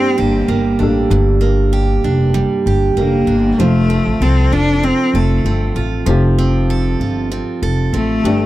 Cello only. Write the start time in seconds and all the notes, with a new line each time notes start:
Already playing: C4
0.19 A#3
2.98 A#3
3.60 A3
4.22 C4
4.52 D4
4.84 C4
5.16 A3
7.93 A3